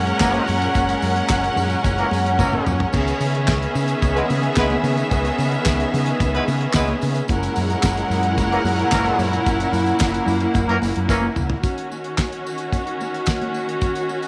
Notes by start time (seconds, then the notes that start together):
Already playing: F#2 A#2 G#3 C#4 A#4 F#5
0.07 closed hi-hat
0.20 F#1 E3 A#3 C#4 A#4, kick, snare, clap, closed hi-hat, tambourine, high conga
0.34 closed hi-hat, high conga
0.47 F#2, open hi-hat, tambourine
0.62 closed hi-hat
0.74 F#1, kick, closed hi-hat, tambourine, muted conga
0.88 closed hi-hat, tambourine
1.02 F#2, open hi-hat, tambourine
1.16 closed hi-hat
1.28 F#1, kick, snare, clap, closed hi-hat, tambourine, high conga
1.44 closed hi-hat
1.56 F#2, open hi-hat, tambourine, low conga
1.70 closed hi-hat, tambourine
1.84 F#1, kick, closed hi-hat, tambourine, muted conga
1.98 E3 A#3 C#4 A#4, closed hi-hat
2.11 F#2, open hi-hat, tambourine, muted conga
2.26 closed hi-hat
2.38 F#1 E3 A#3 C#4 A#4, kick, high tom, tambourine, high conga
2.52 mid tom, high conga
2.66 F#2, mid tom, tambourine
2.80 floor tom
2.93 C#2 D#3 B3 G#4 E5, kick, crash, tambourine, muted conga
3.07 closed hi-hat, tambourine
3.20 C#3, open hi-hat, tambourine
3.35 closed hi-hat
3.47 C#2, kick, snare, clap, closed hi-hat, tambourine, high conga
3.62 closed hi-hat
3.75 C#3, open hi-hat, tambourine
3.88 closed hi-hat, tambourine
4.02 C#2, kick, closed hi-hat, tambourine, muted conga
4.16 G#3 B3 E4 B4, closed hi-hat
4.30 C#3, open hi-hat, tambourine, muted conga
4.43 closed hi-hat
4.56 C#2 G#3 B3 E4 B4, kick, snare, clap, closed hi-hat, tambourine, high conga
4.70 closed hi-hat, high conga
4.83 C#3, open hi-hat, tambourine
4.97 closed hi-hat, tambourine
5.11 C#2, kick, closed hi-hat, tambourine, muted conga
5.25 closed hi-hat, tambourine
5.38 C#3, open hi-hat, tambourine, muted conga
5.52 closed hi-hat, tambourine
5.65 C#2, kick, snare, clap, closed hi-hat, tambourine, high conga
5.80 closed hi-hat
5.93 C#3, open hi-hat, tambourine, low conga
6.06 closed hi-hat, tambourine
6.20 C#2, kick, closed hi-hat, tambourine, muted conga
6.34 G#3 B3 E4 B4, closed hi-hat
6.48 C#3, open hi-hat, tambourine, muted conga
6.61 closed hi-hat
6.73 C#2 G#3 B3 E4 B4, kick, snare, clap, closed hi-hat, tambourine, high conga
6.88 closed hi-hat, high conga
7.01 C#3, open hi-hat, tambourine
7.14 closed hi-hat, tambourine
7.28 F#1 A#2 G#3 C#4 E4 A#4 F#5, kick, closed hi-hat, tambourine, muted conga
7.43 closed hi-hat, tambourine
7.56 F#2, open hi-hat, tambourine, muted conga
7.70 closed hi-hat, tambourine
7.83 F#1, kick, snare, clap, closed hi-hat, tambourine, high conga
7.97 closed hi-hat
8.10 F#2, open hi-hat, tambourine
8.23 closed hi-hat
8.38 F#1, kick, closed hi-hat, tambourine, muted conga
8.51 E3 A#3 C#4 A#4, closed hi-hat
8.64 F#2, open hi-hat, tambourine, muted conga
8.79 closed hi-hat
8.91 F#1 E3 A#3 C#4 A#4, kick, snare, clap, closed hi-hat, tambourine, high conga
9.04 closed hi-hat, high conga
9.18 F#2, open hi-hat, tambourine
9.33 closed hi-hat
9.46 F#1 A#3, kick, closed hi-hat, tambourine, muted conga
9.60 closed hi-hat, tambourine
9.72 F#2, open hi-hat, tambourine
9.86 closed hi-hat, tambourine
9.99 F#1, kick, snare, clap, closed hi-hat, tambourine, high conga
10.14 closed hi-hat
10.26 F#2, open hi-hat, tambourine, low conga
10.40 closed hi-hat, tambourine
10.54 F#1, kick, closed hi-hat, tambourine, muted conga
10.68 F#2 E3 A#3 C#4 A#4, closed hi-hat
10.82 F#1, open hi-hat, tambourine, muted conga
10.96 F#2, closed hi-hat
11.08 F#1 E3 A#3 C#4 A#4, kick, snare, tambourine, high conga
11.22 high conga
11.36 C#2, mid tom, tambourine
11.50 floor tom
11.63 D#3 C#4 F#4, kick, closed hi-hat, tambourine, muted conga
11.78 closed hi-hat
11.92 tambourine, muted conga
12.04 closed hi-hat
12.17 kick, snare, clap, closed hi-hat, tambourine, high conga
12.32 closed hi-hat
12.47 tambourine
12.58 closed hi-hat, tambourine
12.72 kick, closed hi-hat, tambourine, muted conga
12.87 closed hi-hat
13.01 tambourine, muted conga
13.14 closed hi-hat
13.26 kick, snare, clap, closed hi-hat, tambourine, high conga
13.42 closed hi-hat, high conga
13.54 tambourine
13.69 closed hi-hat
13.81 kick, closed hi-hat, tambourine, muted conga
13.95 closed hi-hat, tambourine
14.09 tambourine, muted conga
14.22 closed hi-hat, tambourine